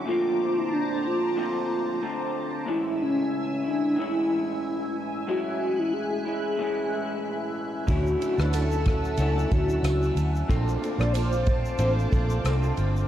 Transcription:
0.00 2.63 D6 loud
0.05 1.35 A#2 medium
0.05 1.35 D3 medium
0.05 1.37 A3 medium
0.05 0.59 F4 loud
0.05 2.65 C5 medium
0.05 2.65 A5 medium
0.05 2.65 A#5 medium
0.10 1.36 C4 loud
0.10 1.37 F4 loud
0.58 0.74 E4 loud
0.73 1.08 D4 loud
1.06 2.03 F4 loud
1.36 2.01 A#2 medium
1.36 2.00 D3 medium
1.36 2.02 A3 medium
1.36 2.02 C4 medium
1.36 2.03 F4 medium
2.01 2.67 D3 medium
2.01 2.67 A3 medium
2.01 2.68 C4 medium
2.01 2.68 F4 medium
2.66 3.64 A2 loud
2.66 3.98 E3 medium
2.66 3.65 G#3 medium
2.66 4.00 C#4 medium
2.66 3.03 E4 loud
2.66 3.64 E4 loud
2.66 10.46 E5 medium
2.66 7.85 G#5 medium
2.66 5.26 E6 medium
3.02 3.68 C#4 loud
3.64 3.98 G#3 soft
3.64 4.00 D4 loud
3.64 3.97 E4 medium
3.96 5.26 A2 medium
3.96 5.27 E3 medium
3.96 5.27 G#3 medium
3.96 4.96 E4 loud
4.00 5.28 C#4 medium
4.00 5.29 E4 medium
5.27 6.25 A2 medium
5.27 6.58 E3 medium
5.27 6.26 G#3 medium
5.27 6.26 C#4 loud
5.27 6.25 E4 loud
5.27 5.81 F#4 loud
5.27 7.86 F#6 loud
5.79 5.95 E4 loud
5.93 6.24 G#4 loud
6.24 6.59 C#4 soft
6.24 6.58 E4 soft
6.24 7.51 G#4 loud
6.28 6.59 G#3 soft
6.57 7.88 A2 medium
6.57 7.87 E3 medium
6.57 7.88 G#3 medium
6.61 7.89 C#4 medium
6.61 7.89 E4 medium
7.87 8.14 D2 loud
7.87 8.88 D3 medium
7.87 8.86 F#3 medium
7.87 8.75 A3 medium
7.87 8.86 C#4 medium
7.87 8.76 D4 medium
7.87 8.76 E4 medium
7.87 8.84 E4 loud
7.87 8.76 F#4 medium
7.87 8.42 F#4 loud
7.87 8.77 C#5 medium
7.87 10.47 F#5 medium
7.87 10.47 A5 medium
7.87 10.47 E6 medium
7.87 kick loud
7.87 ride medium
7.87 shaker medium
8.07 shaker medium
8.22 ride soft
8.22 shaker medium
8.38 9.15 D2 medium
8.38 8.54 B4 loud
8.38 cross-stick medium
8.38 shaker soft
8.53 8.85 A4 loud
8.53 ride medium
8.53 tambourine medium
8.53 shaker medium
8.71 shaker medium
8.85 9.18 F#3 soft
8.85 9.19 C#4 soft
8.85 9.19 E4 soft
8.85 9.17 A4 loud
8.85 kick medium
8.85 cross-stick loud
8.85 ride soft
8.85 shaker soft
9.04 shaker soft
9.17 9.44 C#2 medium
9.17 10.49 F#3 medium
9.17 10.06 A3 medium
9.17 10.50 C#4 medium
9.17 10.06 D4 medium
9.17 10.07 E4 medium
9.17 10.07 F#4 medium
9.17 9.54 A4 loud
9.17 10.07 C#5 medium
9.17 ride medium
9.17 shaker medium
9.22 10.50 E4 medium
9.38 shaker soft
9.51 9.78 D2 medium
9.51 10.17 F#4 medium
9.51 kick loud
9.51 ride soft
9.51 shaker medium
9.69 shaker medium
9.83 10.09 C#2 medium
9.83 cross-stick medium
9.83 ride medium
9.83 tambourine medium
9.83 shaker medium
10.02 shaker soft
10.15 10.42 D2 medium
10.15 ride soft
10.15 shaker medium
10.36 shaker medium
10.48 10.75 A#1 loud
10.48 11.47 A#2 medium
10.48 11.47 D3 medium
10.48 11.49 A3 medium
10.48 11.36 A#3 medium
10.48 11.47 C4 loud
10.48 11.36 D4 medium
10.48 11.37 F4 medium
10.48 11.45 F4 medium
10.48 11.01 A4 loud
10.48 11.37 A4 medium
10.48 13.07 C5 medium
10.48 11.38 C5 medium
10.48 13.08 F5 medium
10.48 13.07 A5 medium
10.48 13.08 D6 medium
10.48 kick loud
10.48 ride medium
10.48 shaker medium
10.69 shaker medium
10.84 ride soft
10.84 shaker medium
10.98 11.75 A#1 medium
10.98 11.14 D5 loud
10.98 cross-stick medium
10.98 shaker soft
11.13 11.78 C5 loud
11.13 ride medium
11.13 tambourine medium
11.13 shaker medium
11.33 shaker medium
11.46 11.78 A3 soft
11.46 11.78 C4 soft
11.46 11.79 F4 soft
11.46 kick loud
11.46 ride soft
11.46 shaker medium
11.65 shaker medium
11.78 12.05 A1 loud
11.78 12.42 D3 medium
11.78 12.44 A3 loud
11.78 12.67 A#3 medium
11.78 12.44 C4 medium
11.78 12.67 D4 medium
11.78 12.67 F4 medium
11.78 12.45 F4 medium
11.78 12.67 A4 medium
11.78 11.93 C5 loud
11.78 12.68 C5 medium
11.78 ride medium
11.78 shaker medium
11.99 shaker soft
12.11 12.39 A#1 medium
12.11 12.73 A4 medium
12.11 kick loud
12.11 ride soft
12.11 shaker medium
12.30 shaker medium
12.43 12.71 C2 loud
12.43 13.08 D3 medium
12.43 13.08 A3 medium
12.43 13.08 C4 medium
12.43 13.08 F4 medium
12.43 cross-stick loud
12.43 ride medium
12.43 tambourine medium
12.43 shaker medium
12.63 shaker soft
12.77 13.04 G1 loud
12.77 ride soft
12.77 shaker soft
12.96 shaker medium

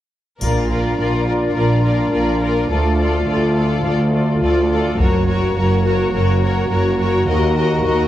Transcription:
0.41 0.92 A#1 soft
0.41 0.93 A#2 soft
0.41 2.67 A#3 soft
0.41 2.67 D4 soft
0.41 0.69 F4 soft
0.41 0.69 A#4 soft
0.41 0.69 D5 soft
0.41 taiko soft
0.41 triangle soft
0.70 0.98 F4 soft
0.70 0.98 A#4 soft
0.70 0.97 D5 soft
0.98 1.49 A#1 soft
0.98 1.50 A#2 soft
0.98 1.27 F4 soft
0.98 1.27 A#4 soft
0.98 1.26 D5 soft
1.28 1.55 F4 soft
1.28 1.55 A#4 soft
1.28 1.55 D5 soft
1.56 2.06 A#1 soft
1.56 2.07 A#2 soft
1.56 1.83 F4 soft
1.56 1.82 A#4 soft
1.56 1.84 D5 soft
1.83 2.12 F4 soft
1.83 2.12 A#4 soft
1.83 2.12 D5 soft
2.13 2.64 A#1 soft
2.13 2.64 A#2 soft
2.13 2.41 F4 soft
2.13 2.41 A#4 soft
2.13 2.41 D5 soft
2.42 2.69 F4 soft
2.42 2.70 A#4 soft
2.42 2.69 D5 soft
2.70 3.21 D2 soft
2.70 3.22 D2 soft
2.70 5.00 A3 soft
2.70 2.98 F4 soft
2.70 4.96 F4 soft
2.70 2.98 A4 soft
2.70 2.99 D5 soft
2.99 3.25 F4 soft
2.99 3.27 A4 soft
2.99 3.27 D5 soft
3.26 3.78 D2 soft
3.26 3.54 F4 soft
3.26 3.56 A4 soft
3.26 3.56 D5 soft
3.55 3.83 F4 soft
3.55 3.84 A4 soft
3.55 3.84 D5 soft
3.84 4.35 D2 medium
3.84 4.36 D2 soft
3.84 4.11 F4 soft
3.84 4.13 A4 soft
3.84 4.13 D5 soft
4.12 4.40 F4 soft
4.12 4.41 A4 soft
4.12 4.42 D5 soft
4.41 4.93 D2 medium
4.41 4.93 D2 soft
4.41 4.69 F4 soft
4.41 4.69 A4 soft
4.41 4.71 D5 soft
4.70 4.98 F4 soft
4.70 4.98 A4 soft
4.70 4.99 D5 soft
4.98 5.50 F#1 medium
4.98 5.50 F#2 medium
4.98 8.08 A#3 soft
4.98 5.26 F#4 soft
4.98 8.08 F#4 soft
4.98 5.28 A#4 soft
4.98 5.27 C#5 soft
4.98 taiko soft
5.27 5.54 F#4 soft
5.27 5.56 A#4 soft
5.27 5.56 C#5 soft
5.55 6.07 F#1 medium
5.55 6.07 F#2 soft
5.55 5.83 F#4 soft
5.55 5.84 A#4 soft
5.55 5.85 C#5 soft
5.84 6.12 F#4 soft
5.84 6.13 A#4 soft
5.84 6.14 C#5 soft
6.13 6.64 F#1 medium
6.13 6.65 F#2 medium
6.13 6.40 F#4 soft
6.13 6.42 A#4 soft
6.13 6.42 C#5 soft
6.41 6.69 F#4 soft
6.41 6.69 A#4 soft
6.41 6.71 C#5 soft
6.70 7.21 F#1 medium
6.70 7.22 F#2 soft
6.70 6.98 F#4 soft
6.70 6.98 A#4 soft
6.70 6.99 C#5 soft
6.99 7.27 F#4 soft
6.99 7.27 A#4 soft
6.99 7.28 C#5 soft
7.28 7.79 D#2 medium
7.28 7.55 F#4 soft
7.28 7.56 A#4 medium
7.28 7.55 D#5 soft
7.56 7.84 F#4 soft
7.56 7.84 A#4 soft
7.56 7.84 D#5 soft
7.85 8.08 D#2 medium
7.85 8.08 F#4 medium
7.85 8.08 A#4 medium
7.85 8.08 D#5 soft

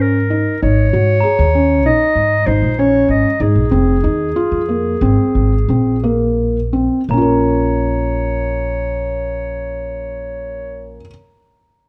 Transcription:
0.00 0.43 G#2 medium
0.00 0.16 C#4 medium
0.00 0.62 A#4 medium
0.30 0.54 D#4 medium
0.62 0.89 G#1 medium
0.62 0.86 D#4 medium
0.62 1.82 C#5 medium
0.93 1.19 G#2 medium
0.93 1.16 F#4 medium
1.20 1.47 G#4 medium
1.20 3.43 A#5 medium
1.39 1.85 D#2 medium
1.55 1.78 C#4 medium
1.85 1.98 A#1 medium
1.85 2.32 D#4 medium
1.85 2.48 D#5 medium
2.16 2.42 G#2 medium
2.46 2.60 G#1 medium
2.46 2.71 D#4 medium
2.46 2.81 C5 medium
2.62 3.02 A#1 medium
2.79 3.26 C#4 medium
2.79 3.10 C#5 medium
3.08 3.22 G#1 medium
3.08 3.44 D#5 medium
3.40 3.54 G#2 medium
3.40 3.64 D#4 medium
3.40 6.39 G#4 medium
3.55 3.69 A#1 medium
3.71 4.05 F1 medium
3.71 3.96 C4 medium
4.04 4.31 D#2 medium
4.04 4.28 D#4 medium
4.36 4.61 F4 medium
4.52 4.94 F2 medium
4.69 4.94 A#3 medium
5.01 5.16 G#1 medium
5.01 5.52 C4 medium
5.35 5.64 G#1 medium
5.69 6.87 A#1 medium
5.69 5.95 C4 medium
6.04 6.56 A#3 medium
6.73 7.00 C4 medium
7.09 10.96 A#1 medium
7.09 10.97 A#3 medium
7.09 10.97 C#5 medium
7.09 10.98 A#5 medium
7.13 11.00 C#4 medium
7.18 11.05 F4 medium
7.22 11.09 A#4 medium

